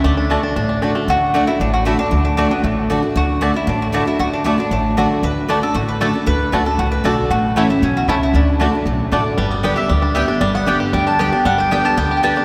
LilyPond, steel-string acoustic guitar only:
\new Staff \with { instrumentName = "Steel-string acoustic guitar" } { \time 4/4 \key d \major \tempo 4 = 231 << { r4 <d a d' fis'>4 r4 <d a d' fis'>8 <d' fis'>8 | r4 <d a d' fis'>8 <d' fis'>8 r4 <d a d' fis'>8 <d' fis'>8 | r4 <d a d' fis'>8 <d' fis'>8 r4 <d a d' fis'>8 <d' fis'>8 | r4 <d a d' fis'>8 <d' fis'>8 r4 <d a d' fis'>8 <d' fis'>8 |
r4 <d a d' fis'>8 <d' fis'>8 r4 <d a d' fis'>4 | r4 <d a d' fis'>8 <d' fis'>8 r4 <d a d' fis'>8 <d' fis'>8 | r4 <d a d' fis'>8 <d' fis'>8 r4 <d a d' fis'>4 | r4 <e a cis' e'>8 <cis' e'>8 r2 |
r4 <d a d' fis'>8 <d' fis'>8 r4 <d a d' fis'>4 | r4 <d g b g'>8 <b g'>8 r4 <d g b g'>8 <b g'>8 | r4 <d g b g'>4 r4 <d g b g'>8 <b g'>8 | r4 <d g b g'>4 r4 <d g b g'>8 <b g'>8 | } \\ { d2 a,2 | d2 a,2 | d2 a,2 | d2 a,2 |
d2 a,2 | d2 a,2 | d2 a,2 | a,2 b,4 cis4 |
d2 a,2 | g,2 d2 | g,2 d2 | g,2 d2 | } >> }